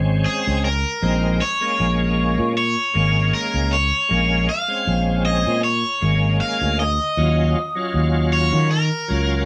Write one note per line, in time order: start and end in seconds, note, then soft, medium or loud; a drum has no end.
0.00 0.24 G#1 medium
0.00 0.68 G#3 medium
0.00 0.68 C4 medium
0.00 0.68 C#4 medium
0.26 0.64 G#4 medium
0.26 muted fretless electric bass stroke soft
0.47 0.83 C#2 medium
0.65 1.44 A#4 medium
1.02 1.39 A#1 medium
1.02 1.43 G#3 medium
1.02 1.43 C4 medium
1.02 1.44 D#4 medium
1.42 2.53 C#5 medium
1.61 2.55 G#3 medium
1.61 2.55 A#3 medium
1.61 2.55 C#4 medium
1.80 2.36 A#1 medium
2.39 2.75 A#2 medium
2.57 3.36 C#5 medium
2.94 3.31 G#1 medium
2.94 3.76 G#3 medium
2.94 3.76 A#3 medium
2.94 3.77 C#4 medium
3.34 3.73 A#4 medium
3.34 muted fretless electric bass stroke soft
3.54 3.90 C#2 medium
3.73 4.49 C#5 medium
4.09 4.47 A#1 medium
4.09 4.50 G#3 medium
4.09 4.51 A#3 medium
4.09 4.51 C#4 medium
4.49 5.25 F5 medium
4.68 5.62 G#3 medium
4.68 5.62 C4 medium
4.68 5.63 C#4 medium
4.87 5.43 A#1 medium
5.25 5.64 D#5 medium
5.47 5.83 A#2 medium
5.64 6.37 C#5 medium
6.01 6.38 G#1 medium
6.01 6.83 G#3 medium
6.01 6.83 A#3 medium
6.01 6.84 C#4 medium
6.41 6.79 F5 medium
6.41 muted fretless electric bass stroke soft
6.62 6.98 D2 medium
6.80 8.29 D#5 medium
7.17 7.54 D#2 medium
7.17 7.58 F#3 medium
7.17 7.58 C#4 medium
7.17 7.59 F4 medium
7.75 8.69 F#3 medium
7.75 8.70 C#4 medium
7.75 8.70 F4 medium
7.94 8.50 D#2 medium
8.33 8.68 C#5 medium
8.53 8.89 D#3 medium
8.71 9.45 A#4 medium
9.08 9.45 C#2 medium
9.08 9.45 F#3 medium
9.08 9.45 C#4 medium
9.08 9.45 F4 medium